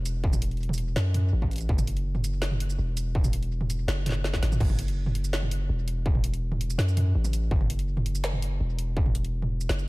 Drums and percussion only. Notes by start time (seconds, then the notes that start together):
0.06 closed hi-hat, shaker
0.24 kick
0.33 mid tom, shaker
0.42 closed hi-hat
0.51 closed hi-hat
0.57 closed hi-hat
0.63 closed hi-hat
0.69 mid tom
0.73 shaker
0.78 closed hi-hat
0.96 snare
1.14 closed hi-hat, mid tom
1.42 kick, mid tom
1.51 closed hi-hat
1.53 closed hi-hat
1.56 closed hi-hat
1.58 closed hi-hat, shaker
1.69 kick
1.78 mid tom, shaker
1.87 closed hi-hat
1.97 closed hi-hat
2.15 mid tom
2.24 closed hi-hat, shaker
2.42 snare
2.51 mid tom
2.60 closed hi-hat
2.70 shaker
2.97 closed hi-hat, shaker
3.15 kick
3.24 mid tom, shaker
3.33 closed hi-hat
3.43 closed hi-hat
3.61 mid tom
3.70 closed hi-hat, shaker
3.88 snare
4.06 snare, closed hi-hat, mid tom
4.09 snare
4.12 snare
4.24 snare
4.33 kick, snare
4.43 snare, closed hi-hat, mid tom
4.52 mid tom, shaker
4.60 kick, crash
4.70 mid tom
4.79 closed hi-hat
4.88 closed hi-hat
5.06 mid tom
5.15 closed hi-hat
5.24 shaker
5.33 snare
5.43 mid tom
5.51 closed hi-hat
5.88 closed hi-hat
6.06 kick
6.15 mid tom
6.24 closed hi-hat
6.34 closed hi-hat
6.52 mid tom
6.61 closed hi-hat
6.70 shaker
6.79 snare
6.88 shaker
6.97 closed hi-hat, mid tom
7.24 mid tom, shaker
7.33 closed hi-hat, shaker
7.51 kick
7.61 mid tom
7.70 closed hi-hat
7.79 closed hi-hat
7.97 mid tom
8.06 closed hi-hat
8.15 shaker
8.24 snare
8.33 mid tom
8.42 closed hi-hat
8.79 closed hi-hat
8.97 kick
9.06 mid tom
9.15 closed hi-hat
9.24 closed hi-hat
9.42 mid tom
9.61 shaker
9.69 snare
9.79 shaker